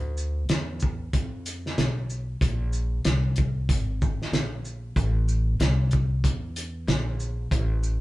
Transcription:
Already playing: upright bass D2
0.17 shaker
0.49 upright bass E2, snare, closed hi-hat
0.80 kick, shaker
1.13 upright bass F2, kick, closed hi-hat
1.46 closed hi-hat, shaker
1.66 snare
1.77 upright bass B1, snare, closed hi-hat
2.10 shaker
2.41 upright bass A#1, kick, closed hi-hat
2.73 shaker
3.05 upright bass C2, snare, closed hi-hat
3.36 kick, closed hi-hat, shaker
3.69 upright bass G#1, kick, closed hi-hat
4.02 kick, shaker
4.20 muted upright bass stroke, snare
4.32 upright bass A#1, snare, closed hi-hat
4.65 shaker
4.96 upright bass A1, kick, closed hi-hat
5.28 shaker
5.60 upright bass C2, snare, closed hi-hat
5.91 kick, closed hi-hat, shaker
6.24 upright bass E2, kick, closed hi-hat
6.56 closed hi-hat, shaker
6.87 upright bass A#1, snare, closed hi-hat
7.20 shaker
7.51 upright bass A1, kick, closed hi-hat
7.83 shaker

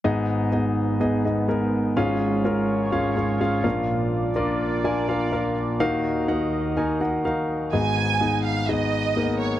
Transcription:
0.04 grand piano G#1 G#2 B3 D#4 G#4 D#5, analog synth pad G#2 G#3 B3 D#4
0.52 grand piano B3 D#4 G#4 D#5
1.00 grand piano B3 D#4 G#4 D#5
1.25 grand piano B3 D#4 G#4 D#5
1.48 grand piano B3 D#4 G#4 A#4
1.97 grand piano G#1 G#2 C#4 F4 G#4 F5, analog synth pad F4 C#5
2.44 grand piano C#4 F4 G#4 A#4
2.92 grand piano C#4 F4 G#4 F5
3.16 grand piano C#4 F4 G#4 F5
3.41 grand piano C#4 F4 G#4 F5
3.64 grand piano A#1 A#2 D4 F4 A#4 F5, analog synth pad A#2 A#3 D5
4.36 grand piano D4 F4 A#4 D5
4.84 grand piano D4 F4 A#4 G#5
5.09 grand piano D4 F4 A#4 F5
5.32 grand piano D4 F4 A#4 F5
5.80 grand piano D#2 D#3 D#4 F#4 A#4 F5, analog synth pad D#2 D#3 F#4 D#5
6.28 grand piano D#4 F#4 A#4 F#5
6.77 grand piano D#4 F#4 A#4 G#5
7.01 grand piano D#4 F#4 A#4 F#5
7.25 grand piano D#4 F#4 A#4 F5
7.73 grand piano G#1 G#2 B3 D#4 G#4 D#5, violin section G#5
8.20 grand piano B3 D#4 G#4 D#5
8.45 violin section F5
8.69 grand piano B3 D#4 G#4 D#5, violin section D#5
9.16 grand piano A#3 D#4 G#4 A#4
9.22 grand piano B3
9.40 violin section C#5

